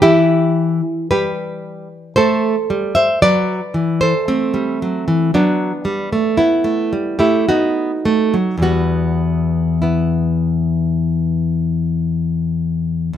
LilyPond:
\new Staff \with { instrumentName = "Nylon-string guitar" } { \time 4/4 \key e \minor \tempo 4 = 56 << { <e' g'>4 <g' b'>4 <a' c''>8. <c'' e''>16 <b' d''>8. <a' c''>16 | <a c'>4 <b d'>4 <b e'>8. <e' g'>16 <dis' fis'>4 | <b fis'>4 <b e'>2 r4 | } \\ { e4 g4 a8 g8 fis8 e8 | r16 g16 fis16 e16 fis8 g16 a16 r16 a16 g16 a16 b8 a16 fis16 | <e, e g>1 | } >> }